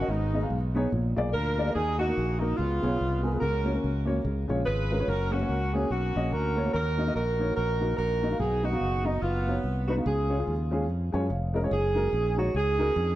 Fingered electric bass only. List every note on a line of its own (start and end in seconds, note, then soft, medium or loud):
0.08 0.44 G#1 medium
0.50 0.86 B1 medium
0.92 1.13 A#1 medium
1.18 1.31 B1 medium
1.34 1.69 D2 medium
1.75 2.11 D#2 medium
2.17 2.53 A#1 medium
2.59 2.80 C#2 medium
2.83 2.98 B1 medium
3.01 3.36 C2 medium
3.42 3.77 C#2 medium
3.84 4.19 C#2 medium
4.25 4.46 C#2 medium
4.49 4.64 A#1 medium
4.66 5.02 G#1 medium
5.08 5.43 F#1 loud
5.49 5.85 C#2 medium
5.90 6.12 B1 medium
6.16 6.30 A#1 medium
6.32 6.68 D2 medium
6.74 7.09 D#2 medium
7.15 7.51 A#1 medium
7.57 7.92 A#1 medium
7.98 8.34 A#1 medium
8.40 8.75 B1 medium
8.81 9.16 F#1 medium
9.22 9.58 F#1 medium
9.64 9.99 C2 medium
10.06 10.41 C#2 loud
10.47 10.89 D#2 medium
10.89 11.10 F2 medium
11.14 11.28 F#2 medium
11.30 11.65 F1 medium
11.71 12.07 F#1 loud
12.13 12.48 A#1 medium
12.54 12.90 C#2 medium
12.96 13.15 F2 loud